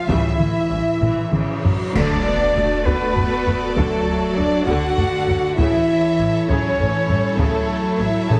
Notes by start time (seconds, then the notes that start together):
Already playing: F5
0.08 A1 C#3 E3 G3 E4 E5, taiko, reverse cymbal
0.39 A1 E3 A3, taiko mid
0.70 A1 G3 C#4
1.01 A1 E3, taiko low-mid
1.32 A1 C#3, taiko mid
1.64 A1 F#3, taiko low
1.94 D2 D3 F#3 D4 F#4 A4 D5, concert bass drum, taiko, crash, sub drop
2.25 B3
2.55 D2 F#3 A3
2.85 D2 D3 B3 B4, taiko
3.15 D2 A3, taiko low
3.46 D2 F#3, taiko low
3.76 D2 D3 F#3 A3 A4, taiko
4.36 D2 F#3 D4 D5
4.66 D2 D3 F#4 F#5, taiko
4.98 D2 A3, taiko low
5.27 D2 F#3, taiko low
5.55 A1 C#3 E3 E4 A4 C#5 E5, taiko
6.18 A1 E3
6.47 A1 C#3 F#3 C#4 C#5, taiko
6.78 A1 E3 A3, taiko low
7.08 A1 E3 G3, taiko low
7.38 A1 C#3 F#3 A3 A4, taiko
7.99 A1 E3 E4 E5
8.29 A1 C#3 E3 A4 A5, taiko low-mid